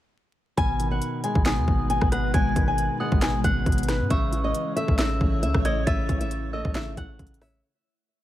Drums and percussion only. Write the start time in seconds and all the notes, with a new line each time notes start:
0.58 kick, closed hi-hat
0.80 closed hi-hat
1.02 closed hi-hat
1.24 closed hi-hat
1.35 kick
1.45 snare, clap, closed hi-hat
1.68 kick
1.90 closed hi-hat
2.01 kick, cross-stick
2.12 cross-stick, closed hi-hat
2.34 kick, closed hi-hat
2.56 kick, closed hi-hat
2.78 closed hi-hat
3.12 kick
3.22 snare, clap, closed hi-hat
3.44 kick, closed hi-hat
3.66 kick, closed hi-hat
3.72 closed hi-hat
3.78 closed hi-hat
3.83 closed hi-hat
3.88 cross-stick, snare, closed hi-hat
4.10 kick, closed hi-hat
4.33 closed hi-hat
4.54 closed hi-hat
4.77 closed hi-hat
4.88 kick
4.98 snare, clap, closed hi-hat
5.21 kick
5.43 closed hi-hat
5.54 kick, cross-stick
5.65 cross-stick, closed hi-hat
5.87 kick, closed hi-hat
6.09 kick, closed hi-hat
6.21 closed hi-hat
6.31 closed hi-hat
6.65 kick
6.75 snare, clap, closed hi-hat
6.97 kick, closed hi-hat
7.19 kick, closed hi-hat
7.27 closed hi-hat
7.34 closed hi-hat
7.41 cross-stick, open hi-hat